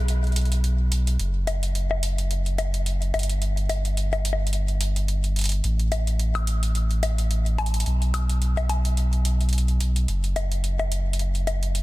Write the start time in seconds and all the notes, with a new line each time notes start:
Already playing: B1
0.08 closed hi-hat
0.24 closed hi-hat
0.27 closed hi-hat
0.32 closed hi-hat
0.36 closed hi-hat
0.41 closed hi-hat
0.45 closed hi-hat
0.52 closed hi-hat
0.64 closed hi-hat
0.92 closed hi-hat
1.07 closed hi-hat
1.19 F#1, closed hi-hat
1.47 closed hi-hat, high bongo
1.63 closed hi-hat
1.75 closed hi-hat
1.91 high bongo
2.03 closed hi-hat
2.18 closed hi-hat
2.31 closed hi-hat
2.46 closed hi-hat
2.58 closed hi-hat, high bongo
2.74 closed hi-hat
2.86 closed hi-hat
3.02 closed hi-hat
3.14 G1, closed hi-hat, high bongo
3.19 closed hi-hat
3.23 closed hi-hat
3.29 closed hi-hat
3.42 closed hi-hat
3.57 closed hi-hat
3.69 closed hi-hat, high bongo
3.85 closed hi-hat
3.97 closed hi-hat
4.13 closed hi-hat, high bongo
4.25 closed hi-hat
4.33 high bongo
4.47 closed hi-hat
4.53 closed hi-hat
4.68 closed hi-hat
4.81 closed hi-hat
4.96 closed hi-hat
5.08 closed hi-hat
5.24 closed hi-hat
5.36 closed hi-hat
5.39 closed hi-hat
5.41 closed hi-hat
5.44 closed hi-hat
5.49 closed hi-hat
5.52 closed hi-hat
5.64 A1, closed hi-hat
5.79 closed hi-hat
5.92 closed hi-hat, high bongo
6.07 closed hi-hat
6.19 closed hi-hat
6.35 closed hi-hat, high bongo
6.47 closed hi-hat
6.63 closed hi-hat
6.75 closed hi-hat
6.91 closed hi-hat
7.03 closed hi-hat, high bongo
7.18 closed hi-hat
7.31 closed hi-hat
7.46 closed hi-hat
7.58 closed hi-hat, high bongo
7.66 closed hi-hat
7.74 closed hi-hat
7.80 closed hi-hat
7.86 B1, closed hi-hat
8.02 closed hi-hat
8.14 closed hi-hat, high bongo
8.29 closed hi-hat
8.42 closed hi-hat
8.57 closed hi-hat, high bongo
8.69 closed hi-hat, high bongo
8.85 closed hi-hat
8.97 closed hi-hat
9.13 closed hi-hat
9.25 closed hi-hat
9.41 closed hi-hat
9.49 closed hi-hat
9.53 closed hi-hat
9.58 closed hi-hat
9.68 closed hi-hat
9.80 closed hi-hat
9.96 closed hi-hat
10.08 F#1, closed hi-hat
10.24 closed hi-hat
10.36 closed hi-hat, high bongo
10.52 closed hi-hat
10.64 closed hi-hat
10.79 closed hi-hat, high bongo
10.92 closed hi-hat
11.13 closed hi-hat
11.19 closed hi-hat
11.35 closed hi-hat
11.47 closed hi-hat, high bongo
11.63 closed hi-hat
11.75 closed hi-hat